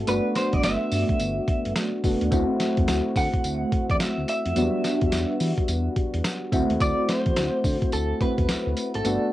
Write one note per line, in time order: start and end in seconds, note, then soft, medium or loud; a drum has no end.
0.00 0.11 A4 medium
0.07 0.21 G1 loud
0.07 2.00 A3 medium
0.07 2.00 B3 medium
0.07 2.01 D4 medium
0.07 2.01 F#4 medium
0.07 0.36 B4 loud
0.07 closed hi-hat medium
0.07 tambourine medium
0.36 0.54 C5 medium
0.36 snare medium
0.36 closed hi-hat medium
0.36 tambourine medium
0.53 0.61 G1 medium
0.53 0.64 D5 loud
0.53 kick medium
0.53 closed hi-hat medium
0.63 0.77 G1 loud
0.63 1.72 E5 loud
0.63 snare loud
0.63 closed hi-hat medium
0.63 tambourine medium
0.92 1.05 G2 medium
0.92 open hi-hat medium
0.92 tambourine medium
1.09 kick medium
1.09 closed hi-hat soft
1.20 1.40 G1 medium
1.20 closed hi-hat medium
1.20 tambourine medium
1.48 kick medium
1.48 closed hi-hat medium
1.65 1.73 G1 medium
1.65 closed hi-hat soft
1.76 snare loud
1.76 closed hi-hat medium
1.76 tambourine loud
2.04 2.17 F#1 loud
2.04 2.30 A3 medium
2.04 2.32 B3 medium
2.04 2.32 D4 medium
2.04 2.32 F#4 medium
2.04 kick medium
2.04 open hi-hat medium
2.04 tambourine medium
2.21 2.29 D#2 loud
2.21 closed hi-hat medium
2.31 2.45 D2 loud
2.31 4.52 A3 medium
2.31 4.52 C4 medium
2.31 4.53 E4 medium
2.31 4.53 F#4 medium
2.31 kick loud
2.31 closed hi-hat medium
2.31 tambourine medium
2.60 snare medium
2.60 closed hi-hat medium
2.60 tambourine medium
2.77 2.85 E2 medium
2.77 kick loud
2.77 closed hi-hat soft
2.88 3.01 D2 loud
2.88 snare loud
2.88 closed hi-hat medium
2.88 tambourine medium
3.16 3.29 D3 loud
3.16 3.86 F#5 loud
3.16 kick loud
3.16 open hi-hat medium
3.16 tambourine medium
3.33 kick medium
3.33 closed hi-hat soft
3.44 3.65 D2 medium
3.44 closed hi-hat medium
3.44 tambourine medium
3.72 kick loud
3.72 closed hi-hat medium
3.90 3.97 E2 medium
3.90 3.95 D5 medium
3.90 kick medium
3.90 closed hi-hat medium
4.00 4.07 D2 medium
4.00 4.28 E5 loud
4.00 snare loud
4.00 closed hi-hat medium
4.00 tambourine medium
4.18 4.25 D2 medium
4.28 5.93 E5 loud
4.28 closed hi-hat medium
4.28 tambourine medium
4.46 4.53 F2 medium
4.46 closed hi-hat medium
4.56 4.69 E2 loud
4.56 4.64 F#3 medium
4.56 6.49 B3 medium
4.56 6.49 D4 medium
4.56 6.49 F#4 medium
4.56 closed hi-hat medium
4.56 tambourine medium
4.62 6.51 G3 medium
4.84 snare medium
4.84 closed hi-hat medium
4.84 tambourine medium
5.01 5.10 E2 medium
5.01 kick medium
5.01 closed hi-hat soft
5.12 5.25 E2 medium
5.12 snare loud
5.12 closed hi-hat medium
5.12 tambourine loud
5.40 5.53 E3 loud
5.40 open hi-hat medium
5.40 tambourine medium
5.58 kick medium
5.58 closed hi-hat soft
5.68 5.89 E2 medium
5.68 closed hi-hat medium
5.68 tambourine medium
5.96 kick medium
5.96 closed hi-hat medium
6.14 6.22 E2 loud
6.14 closed hi-hat soft
6.24 snare loud
6.24 closed hi-hat medium
6.24 tambourine loud
6.52 6.65 D2 loud
6.52 8.17 A3 medium
6.52 8.17 C4 medium
6.52 8.18 E4 medium
6.52 8.18 F#4 medium
6.52 kick loud
6.52 closed hi-hat medium
6.52 tambourine medium
6.70 6.78 D#2 medium
6.70 closed hi-hat medium
6.80 6.93 D2 loud
6.80 7.10 D5 loud
6.80 kick loud
6.80 closed hi-hat medium
6.80 tambourine medium
7.09 7.89 C5 loud
7.09 snare medium
7.09 closed hi-hat medium
7.09 tambourine medium
7.26 7.34 E2 medium
7.26 kick medium
7.26 closed hi-hat soft
7.36 7.50 D2 loud
7.36 snare loud
7.36 closed hi-hat loud
7.36 tambourine loud
7.64 7.77 D3 medium
7.64 kick loud
7.64 open hi-hat medium
7.64 tambourine medium
7.82 kick medium
7.82 closed hi-hat soft
7.92 8.13 D2 medium
7.92 8.19 A4 medium
7.92 closed hi-hat medium
7.92 tambourine medium
8.21 9.03 A3 medium
8.21 9.05 C4 soft
8.21 9.05 E4 soft
8.21 9.05 F#4 medium
8.21 8.95 B4 loud
8.21 kick medium
8.21 closed hi-hat medium
8.38 8.46 E2 medium
8.38 kick medium
8.38 closed hi-hat medium
8.49 8.56 D2 medium
8.49 snare loud
8.49 closed hi-hat medium
8.49 tambourine medium
8.67 8.74 D2 loud
8.77 closed hi-hat medium
8.77 tambourine medium
8.94 9.02 G#1 loud
8.94 9.33 A4 medium
8.94 closed hi-hat soft
9.04 9.18 G1 loud
9.04 9.33 A3 medium
9.04 9.33 B3 medium
9.04 9.33 D4 medium
9.04 9.33 F#4 medium
9.04 closed hi-hat medium
9.04 tambourine medium